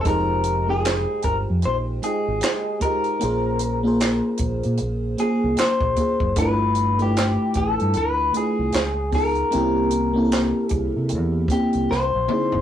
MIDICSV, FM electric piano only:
0, 0, Header, 1, 2, 480
1, 0, Start_track
1, 0, Key_signature, -4, "minor"
1, 0, Tempo, 789474
1, 30, Time_signature, 4, 2, 24, 8
1, 7670, End_track
2, 0, Start_track
2, 0, Title_t, "FM electric piano"
2, 0, Program_c, 0, 5
2, 0, Control_c, 0, 64, 127
2, 0, Note_on_c, 0, 75, 47
2, 0, Note_on_c, 0, 80, 52
2, 28, Note_on_c, 0, 56, 84
2, 36, Note_on_c, 0, 63, 75
2, 39, Control_c, 0, 64, 0
2, 41, Note_on_c, 0, 65, 77
2, 48, Note_on_c, 0, 67, 77
2, 54, Note_on_c, 0, 72, 96
2, 131, Control_c, 0, 64, 127
2, 167, Note_off_c, 0, 80, 0
2, 169, Note_off_c, 0, 75, 0
2, 322, Note_off_c, 0, 56, 0
2, 326, Note_off_c, 0, 63, 0
2, 329, Note_off_c, 0, 65, 0
2, 332, Note_off_c, 0, 67, 0
2, 335, Note_off_c, 0, 72, 0
2, 407, Note_on_c, 0, 56, 68
2, 415, Note_on_c, 0, 63, 58
2, 422, Note_on_c, 0, 65, 64
2, 427, Note_on_c, 0, 79, 60
2, 436, Note_on_c, 0, 70, 76
2, 1063, Note_off_c, 0, 56, 0
2, 1067, Note_off_c, 0, 63, 0
2, 1070, Note_off_c, 0, 65, 0
2, 1073, Note_off_c, 0, 79, 0
2, 1077, Note_off_c, 0, 70, 0
2, 1228, Note_on_c, 0, 56, 59
2, 1236, Note_on_c, 0, 63, 52
2, 1242, Note_on_c, 0, 65, 53
2, 1249, Note_on_c, 0, 79, 55
2, 1256, Note_on_c, 0, 75, 67
2, 1628, Note_off_c, 0, 56, 0
2, 1632, Note_off_c, 0, 63, 0
2, 1634, Note_off_c, 0, 65, 0
2, 1638, Note_off_c, 0, 79, 0
2, 1641, Note_off_c, 0, 75, 0
2, 1702, Note_on_c, 0, 56, 66
2, 1712, Note_on_c, 0, 63, 53
2, 1719, Note_on_c, 0, 65, 61
2, 1725, Note_on_c, 0, 67, 57
2, 1731, Note_on_c, 0, 75, 63
2, 1905, Note_off_c, 0, 56, 0
2, 1910, Note_off_c, 0, 63, 0
2, 1914, Note_off_c, 0, 65, 0
2, 1916, Note_off_c, 0, 67, 0
2, 1920, Note_off_c, 0, 75, 0
2, 1943, Note_on_c, 0, 58, 85
2, 1951, Note_on_c, 0, 61, 81
2, 1958, Control_c, 0, 64, 0
2, 1958, Note_on_c, 0, 65, 77
2, 1965, Note_on_c, 0, 68, 81
2, 1970, Note_on_c, 0, 72, 89
2, 2055, Control_c, 0, 64, 127
2, 2239, Note_off_c, 0, 58, 0
2, 2243, Note_off_c, 0, 61, 0
2, 2247, Note_off_c, 0, 65, 0
2, 2250, Note_off_c, 0, 68, 0
2, 2253, Note_off_c, 0, 72, 0
2, 2330, Note_on_c, 0, 58, 81
2, 2335, Note_on_c, 0, 61, 71
2, 2341, Note_on_c, 0, 65, 75
2, 2350, Note_on_c, 0, 68, 70
2, 2355, Note_on_c, 0, 72, 90
2, 2984, Note_off_c, 0, 58, 0
2, 2987, Note_off_c, 0, 61, 0
2, 2990, Note_off_c, 0, 65, 0
2, 2994, Note_off_c, 0, 68, 0
2, 2997, Note_off_c, 0, 72, 0
2, 3145, Note_on_c, 0, 58, 64
2, 3152, Note_on_c, 0, 61, 54
2, 3158, Note_on_c, 0, 65, 56
2, 3166, Note_on_c, 0, 68, 60
2, 3174, Note_on_c, 0, 70, 72
2, 3546, Note_off_c, 0, 58, 0
2, 3550, Note_off_c, 0, 61, 0
2, 3553, Note_off_c, 0, 65, 0
2, 3557, Note_off_c, 0, 68, 0
2, 3561, Note_off_c, 0, 70, 0
2, 3626, Note_on_c, 0, 58, 58
2, 3631, Note_on_c, 0, 61, 50
2, 3637, Note_on_c, 0, 65, 54
2, 3643, Note_on_c, 0, 68, 56
2, 3652, Note_on_c, 0, 70, 64
2, 3827, Note_off_c, 0, 58, 0
2, 3830, Note_off_c, 0, 61, 0
2, 3833, Note_off_c, 0, 65, 0
2, 3836, Note_off_c, 0, 68, 0
2, 3840, Note_off_c, 0, 70, 0
2, 3868, Note_on_c, 0, 57, 88
2, 3875, Note_on_c, 0, 62, 82
2, 3877, Control_c, 0, 64, 0
2, 3882, Note_on_c, 0, 64, 78
2, 3887, Note_on_c, 0, 65, 80
2, 3894, Note_on_c, 0, 71, 101
2, 3988, Control_c, 0, 64, 127
2, 4162, Note_off_c, 0, 57, 0
2, 4165, Note_off_c, 0, 62, 0
2, 4169, Note_off_c, 0, 64, 0
2, 4171, Note_off_c, 0, 65, 0
2, 4175, Note_off_c, 0, 71, 0
2, 4247, Note_on_c, 0, 57, 73
2, 4254, Note_on_c, 0, 62, 60
2, 4260, Note_on_c, 0, 64, 65
2, 4268, Note_on_c, 0, 65, 63
2, 4275, Note_on_c, 0, 71, 79
2, 4903, Note_off_c, 0, 57, 0
2, 4906, Note_off_c, 0, 62, 0
2, 4909, Note_off_c, 0, 64, 0
2, 4913, Note_off_c, 0, 65, 0
2, 4917, Note_off_c, 0, 71, 0
2, 5063, Note_on_c, 0, 57, 59
2, 5072, Note_on_c, 0, 62, 53
2, 5078, Note_on_c, 0, 64, 55
2, 5083, Note_on_c, 0, 65, 56
2, 5092, Note_on_c, 0, 71, 63
2, 5306, Note_off_c, 0, 57, 0
2, 5311, Note_off_c, 0, 62, 0
2, 5314, Note_off_c, 0, 64, 0
2, 5316, Note_off_c, 0, 65, 0
2, 5318, Control_c, 0, 64, 0
2, 5321, Note_off_c, 0, 71, 0
2, 5415, Control_c, 0, 64, 127
2, 5543, Note_on_c, 0, 59, 65
2, 5552, Note_on_c, 0, 61, 59
2, 5557, Note_on_c, 0, 63, 59
2, 5565, Note_on_c, 0, 65, 56
2, 5572, Note_on_c, 0, 68, 72
2, 5746, Note_off_c, 0, 59, 0
2, 5750, Note_off_c, 0, 61, 0
2, 5752, Note_off_c, 0, 63, 0
2, 5757, Note_off_c, 0, 65, 0
2, 5760, Note_off_c, 0, 68, 0
2, 5781, Note_on_c, 0, 58, 86
2, 5788, Note_on_c, 0, 60, 83
2, 5793, Note_on_c, 0, 61, 82
2, 5799, Control_c, 0, 64, 0
2, 5803, Note_on_c, 0, 64, 78
2, 5808, Note_on_c, 0, 67, 102
2, 5913, Control_c, 0, 64, 127
2, 6078, Note_off_c, 0, 58, 0
2, 6082, Note_off_c, 0, 60, 0
2, 6085, Note_off_c, 0, 61, 0
2, 6089, Note_off_c, 0, 64, 0
2, 6092, Note_off_c, 0, 67, 0
2, 6161, Note_on_c, 0, 58, 83
2, 6171, Note_on_c, 0, 60, 75
2, 6176, Note_on_c, 0, 61, 78
2, 6182, Note_on_c, 0, 64, 76
2, 6190, Note_on_c, 0, 69, 70
2, 6213, Note_off_c, 0, 69, 0
2, 6230, Note_on_c, 0, 70, 87
2, 6820, Note_off_c, 0, 58, 0
2, 6825, Note_off_c, 0, 60, 0
2, 6827, Note_off_c, 0, 61, 0
2, 6830, Note_off_c, 0, 64, 0
2, 6854, Note_off_c, 0, 70, 0
2, 6982, Note_on_c, 0, 58, 61
2, 6989, Note_on_c, 0, 60, 57
2, 6997, Note_on_c, 0, 61, 57
2, 7003, Note_on_c, 0, 64, 54
2, 7011, Note_on_c, 0, 67, 70
2, 7226, Note_off_c, 0, 58, 0
2, 7230, Note_off_c, 0, 60, 0
2, 7234, Note_off_c, 0, 61, 0
2, 7237, Note_off_c, 0, 64, 0
2, 7237, Control_c, 0, 64, 0
2, 7240, Note_off_c, 0, 67, 0
2, 7328, Control_c, 0, 64, 127
2, 7465, Note_on_c, 0, 58, 58
2, 7471, Note_on_c, 0, 60, 52
2, 7478, Note_on_c, 0, 63, 52
2, 7484, Note_on_c, 0, 64, 51
2, 7492, Note_on_c, 0, 68, 58
2, 7667, Note_off_c, 0, 58, 0
2, 7670, Note_off_c, 0, 60, 0
2, 7670, Note_off_c, 0, 63, 0
2, 7670, Note_off_c, 0, 64, 0
2, 7670, Note_off_c, 0, 68, 0
2, 7670, End_track
0, 0, End_of_file